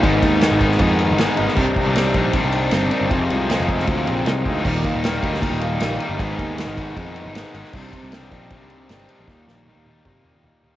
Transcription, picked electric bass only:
X:1
M:4/4
L:1/16
Q:1/4=156
K:Eb
V:1 name="Picked electric bass" clef=bass
A,,,2 E,,3 A,,,3 F,,3 A,,,2 z A,,, z | C,,2 z C,,3 B,,,3 C,,3 G,,,2 z G,,, | F,,,2 C,,3 F,,,3 D,,2 B,,,2 C,,2 D,,2 | E,,,2 z E,,,3 D,,3 E,,,3 B,,,2 z G,,, |
A,,,2 E,,3 A,,,3 F,,3 A,,,2 z A,,, z | C,,2 z C,,3 B,,,3 C,,3 G,,,2 z B,,, | E,,2 B,,,3 E,,3 C,3 E,,2 z E,, z |]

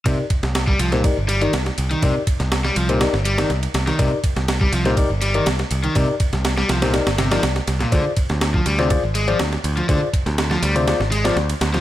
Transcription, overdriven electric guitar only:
X:1
M:4/4
L:1/16
Q:1/4=122
K:Cm
V:1 name="Overdriven electric guitar" clef=bass
C, z4 G, F, B,, z2 G, E, z3 E, | C, z4 G, F, B,, z2 G, E, z3 E, | C, z4 G, F, B,, z2 G, E, z3 E, | C, z4 G, F, B,, z2 C, F, z3 B,, |
D, z4 F, G, C, z2 A, F, z3 F, | D, z4 F, G, C, z2 A, F, z3 F, |]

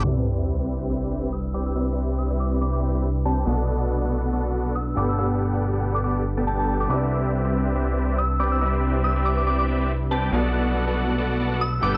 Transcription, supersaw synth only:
X:1
M:4/4
L:1/16
Q:"Swing 16ths" 1/4=140
K:Clyd
V:1 name="Supersaw synth"
[CGBde]4- [CGBde] [CGBde]3 [CGBde]2 [CGBde] [CGBde] z2 [CGBdg]2 | [CGBde]4- [CGBde] [CGBde]3 [CGBde]2 [CGBde] [CGBde] z2 [CGBdg]2 | [B,FAdf]4- [B,FAdf] [B,FAdf]3 [B,FAdf]2 [B,FAdf] [B,FAdf] z2 [B,GAdg]2 | [B,GAdf]4- [B,GAdf] [B,GAdf]3 [B,GAdf]2 z [B,GAda] [B,GAdg]3 [B,GAdg] |
[CGBde]4- [CGBde] [CGBde]3 [CGBde]2 [CGBde] [CGBde] z2 [CGBdg]2 | [CGBde]4- [CGBde] [CGBde]3 [CGBde]2 [CGBde] [CGBde] z2 [CGBdg]2 | [B,FAdf]4- [B,FAdf] [B,FAdf]3 [B,FAdf]2 [B,FAdf] [B,FAdf] z2 [B,GAdg]2 |]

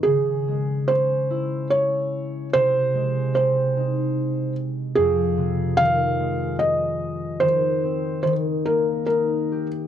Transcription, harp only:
X:1
M:3/4
L:1/8
Q:1/4=73
K:Dblyd
V:1 name="Harp" clef=bass
D, A, D _F3 | C, A, C E3 | F,, C, E, A,3 | E, C E, B, E G |]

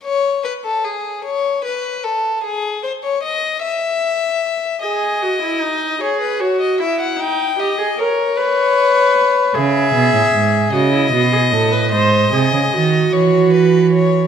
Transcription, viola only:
X:1
M:6/8
L:1/16
Q:3/8=50
K:C#m
V:1 name="Viola"
z12 | z12 | G2 F E D2 G2 F2 E2 | D2 =G ^G ^A2 B6 |
G6 F E F G A B | ^B2 G2 F8 |]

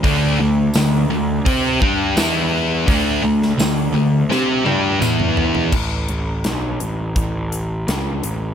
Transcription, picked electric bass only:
X:1
M:4/4
L:1/8
Q:1/4=84
K:D
V:1 name="Picked electric bass" clef=bass
D,, D,, D,, D,, =C, G,, E,,2 | D,, D,, D,, D,, =C, G,, E,,2 | [K:A] A,,, A,,, B,,, A,,, A,,,2 C,, A,,, |]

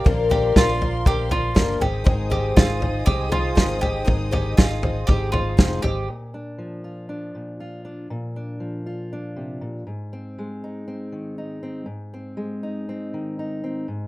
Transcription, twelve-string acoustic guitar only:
X:1
M:4/4
L:1/8
Q:1/4=119
K:Bbmix
V:1 name="Twelve-string acoustic guitar"
[B,,D,F,B,DB] [B,,D,F,B,DB]2 [F,B,DB] [F,B,DB] [F,B,DB] [B,,D,F,B,DB] [A,CEA] | [A,,E,A,CEA] [A,,E,A,CEA]2 [A,CEA] [A,CEA] [A,CEA] [A,,E,A,CEA] [A,CEA] | [A,,E,A,CEA] [A,,E,A,CEA]2 [A,CEA] [A,CEA] [A,CEA] [A,,E,A,CEA] [A,CEA] | z8 |
z8 | z8 | z8 |]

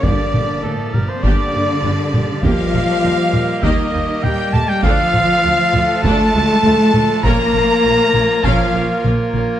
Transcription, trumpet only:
X:1
M:4/4
L:1/16
Q:1/4=100
K:Dphr
V:1 name="Trumpet"
d4 A2 B c d6 z2 | f8 e4 g2 a g | f8 a8 | b8 f4 z4 |]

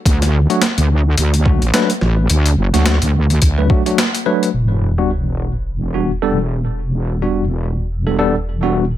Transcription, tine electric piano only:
X:1
M:4/4
L:1/16
Q:"Swing 16ths" 1/4=107
K:Em
V:1 name="Tine electric piano"
z3 [F,A,DF] z6 [F,A,DF] z [F,A,DB] z3 | z3 [F,A,DF]2 z4 [F,A,DB] [F,A,DF] [F,A,DF] z2 [F,A,DB]2 | z3 [G,B,DF] z6 [G,B,DF] z [G,B,DA] z3 | z3 [G,B,DF]2 z4 [G,B,DA] [G,B,DA] z2 [G,B,DF]2 z |]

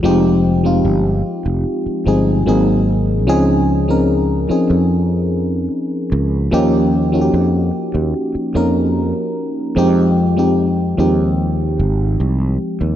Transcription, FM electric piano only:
X:1
M:4/4
L:1/16
Q:1/4=74
K:Fm
V:1 name="FM electric piano"
[F,A,CEG]2 z [F,A,CEF]4- [F,A,CEF] z2 [F,A,CEA]2 [_G,B,CEA]3 z | [F,CDEA]2 z [F,CDEB]2 z [F,CDEA]4- [F,CDEA] z4 z | [F,B,DEG]2 z [F,B,DE_G=G]4- [F,B,DE_G=G] z2 [F,B,DEB]4 z2 | [F,A,CEG]2 z [F,A,CEG]2 z [F,A,CEG]4- [F,A,CEG] z4 z |]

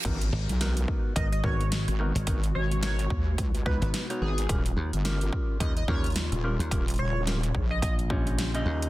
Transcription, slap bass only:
X:1
M:4/4
L:1/16
Q:"Swing 16ths" 1/4=108
K:G#dor
V:1 name="Slap bass" clef=bass
z2 G,,, z4 z G,,,2 G,,,3 z2 G,,, | z8 z3 G,,, z4 | z2 D,, z4 z D,,2 D,,3 z2 D,, | z8 A,,,6 D,,2 |]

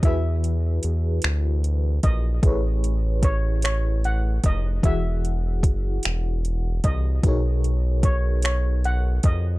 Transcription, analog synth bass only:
X:1
M:6/8
L:1/8
Q:3/8=50
K:Elyd
V:1 name="Analog synth bass" clef=bass
E,,2 E,, =D,,2 A,,, | =A,,,4- A,,, ^E,,, | E,,,2 F,,, E,,,2 =C,, | B,,,4- B,,, ^E,, |]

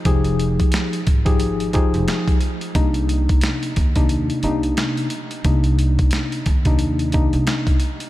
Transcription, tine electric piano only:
X:1
M:4/4
L:1/16
Q:"Swing 16ths" 1/4=89
K:Cphr
V:1 name="Tine electric piano"
[F,EGA]6 z [F,EGA]3 [F,EGA]4 z2 | [C,B,=DE]6 z [C,B,DE]3 [C,B,DE]4 z2 | [C,B,=DE]6 z [C,B,DE]3 [C,B,DE]4 z2 |]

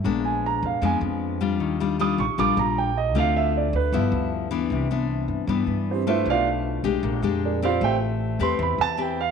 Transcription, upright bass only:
X:1
M:4/4
L:1/16
Q:1/4=154
K:C
V:1 name="Upright bass" clef=bass
_B,,,6 F,, z F,,2 F,,6 | _E,,6 _B,,, z B,,,2 B,,,6 | D,,6 D,,2 G,,,2 D,,6 | C,,6 G,,2 G,,2 G,,6 |
B,,,6 B,,,2 _B,,,2 F,,6 | A,,,6 E,,2 E,,2 E,,6 |]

